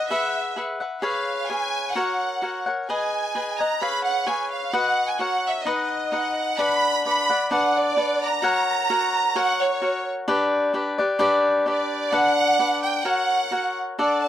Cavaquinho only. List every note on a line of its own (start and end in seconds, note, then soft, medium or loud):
0.00 0.11 D#5 soft
0.00 0.10 F#5 soft
0.10 0.55 G#4 medium
0.10 0.56 B4 medium
0.10 0.56 E5 medium
0.10 0.57 F#5 medium
0.56 0.80 G#4 soft
0.56 0.80 B4 soft
0.56 0.80 E5 soft
0.56 0.79 F#5 soft
0.80 1.02 B4 soft
0.80 1.02 E5 soft
0.80 1.02 F#5 soft
1.02 1.48 G#4 medium
1.02 1.49 B4 medium
1.02 1.49 C#5 medium
1.02 1.50 F5 medium
1.50 1.95 G#4 soft
1.50 1.96 B4 soft
1.50 1.95 C#5 soft
1.50 1.96 F5 soft
1.95 2.41 F#4 medium
1.95 2.41 A#4 medium
1.95 2.42 C#5 medium
1.95 2.42 F#5 medium
2.42 2.66 F#4 soft
2.42 2.67 A#4 soft
2.42 2.66 C#5 soft
2.42 2.65 F#5 soft
2.66 2.89 A#4 soft
2.66 2.89 C#5 soft
2.66 2.88 F#5 soft
2.89 3.34 G#4 medium
2.89 3.34 B4 medium
2.89 3.34 D#5 medium
2.89 3.35 G#5 medium
3.35 3.59 G#4 soft
3.35 3.59 B4 soft
3.35 3.59 D#5 soft
3.35 3.58 G#5 soft
3.59 3.81 B4 soft
3.59 3.82 D#5 soft
3.59 3.81 G#5 soft
3.81 4.25 G#4 medium
3.81 4.26 B4 medium
3.81 4.25 C#5 medium
3.81 4.27 F5 medium
4.26 4.73 G#4 soft
4.26 4.72 B4 soft
4.26 4.73 C#5 medium
4.26 4.73 F5 soft
4.73 5.19 F#4 medium
4.73 5.19 B4 medium
4.73 5.19 D#5 medium
4.73 5.21 F#5 medium
5.19 5.65 F#4 soft
5.19 5.66 A#4 soft
5.19 5.66 C#5 medium
5.19 5.66 F#5 medium
5.65 6.11 D#4 medium
5.65 6.12 B4 medium
5.65 6.12 D#5 medium
5.65 6.13 F#5 medium
6.12 6.58 D#4 medium
6.12 6.58 B4 soft
6.12 6.59 D#5 soft
6.12 6.59 F#5 soft
6.58 7.04 D4 medium
6.58 7.05 B4 medium
6.58 7.05 D5 medium
6.58 7.07 F#5 medium
7.06 7.30 D4 soft
7.06 7.29 B4 soft
7.06 7.29 D5 medium
7.06 7.28 F#5 soft
7.30 7.50 B4 soft
7.30 7.51 D5 soft
7.30 7.51 F#5 soft
7.51 7.95 D4 medium
7.51 7.96 B4 medium
7.51 7.97 D5 medium
7.51 7.98 F#5 medium
7.96 8.42 D4 soft
7.96 8.43 B4 soft
7.96 8.43 D5 medium
7.96 8.43 F#5 medium
8.42 8.89 F#4 medium
8.42 8.89 A#4 medium
8.42 8.90 C#5 medium
8.42 8.90 F#5 medium
8.90 9.34 F#4 medium
8.90 9.35 A#4 medium
8.90 9.35 C#5 soft
8.90 9.35 F#5 medium
9.35 9.80 F#4 medium
9.35 9.81 A#4 medium
9.35 9.82 C#5 medium
9.35 9.82 F#5 medium
9.82 10.27 F#4 soft
9.82 10.27 A#4 soft
9.82 10.28 C#5 soft
9.82 10.28 F#5 soft
10.28 10.73 D4 medium
10.28 10.73 G4 medium
10.28 10.74 B4 medium
10.28 10.75 D5 medium
10.74 10.98 D4 soft
10.74 10.98 G4 soft
10.74 10.98 B4 medium
10.74 10.97 D5 soft
10.98 11.18 G4 soft
10.98 11.18 B4 soft
10.98 11.19 D5 medium
11.19 11.65 D4 medium
11.19 11.65 G4 medium
11.19 11.66 B4 medium
11.19 11.66 D5 loud
11.66 12.11 D4 soft
11.66 12.12 G4 soft
11.66 12.12 B4 medium
11.66 12.12 D5 medium
12.12 12.58 D4 medium
12.12 12.58 B4 medium
12.12 12.59 D5 medium
12.12 12.60 F#5 medium
12.59 13.04 D4 soft
12.59 13.05 B4 medium
12.59 13.05 D5 medium
12.59 13.06 F#5 medium
13.05 13.51 F#4 medium
13.05 13.50 A#4 medium
13.05 13.51 C#5 medium
13.05 13.52 F#5 medium
13.51 13.98 F#4 soft
13.51 13.98 A#4 soft
13.51 13.98 C#5 soft
13.51 13.98 F#5 soft
13.99 14.28 D4 medium
13.99 14.28 A4 medium
13.99 14.28 D5 medium
13.99 14.28 F#5 medium